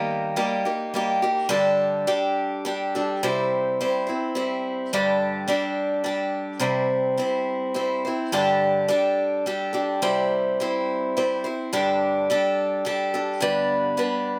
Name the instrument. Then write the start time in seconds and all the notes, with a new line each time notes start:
steel-string acoustic guitar
Already playing: D#3 G3 A#3 D#4 G4
0.36 G3 A#3 D#4 G4
0.65 A#3 D#4 G4
0.94 G3 A#3 D#4 G4
1.22 A#3 D#4 G4
1.49 G2 D3 G3 D4 G4 A4
2.07 G3 D4 G4 A4
2.65 G3 D4 G4 A4
2.95 G3 D4 G4 A4
3.23 C3 G3 C4 E4 C5
3.81 G3 C4 E4 C5
4.07 C4 E4 C5
4.35 G3 C4 E4 C5
4.93 G2 D3 G3 D4 G4 A4
5.48 G3 D4 G4 A4
6.04 G3 D4 G4 A4
6.59 C3 G3 C4 E4 C5
7.17 G3 C4 E4 C5
7.74 G3 C4 E4 C5
8.05 C4 E4 C5
8.32 G2 D3 G3 D4 G4 A4
8.88 G3 D4 G4 A4
9.46 G3 D4 G4 A4
9.73 G3 D4 G4 A4
10.02 C3 G3 C4 E4 C5
10.60 G3 C4 E4 C5
11.17 G3 C4 E4 C5
11.44 C4 E4 C5
11.73 G2 D3 G3 D4 G4 A4
12.30 G3 D4 G4 A4
12.85 G3 D4 G4 A4
13.14 G3 D4 G4 A4
13.40 G2 D3 G3 B3 D4 B4
13.97 G3 B3 D4 B4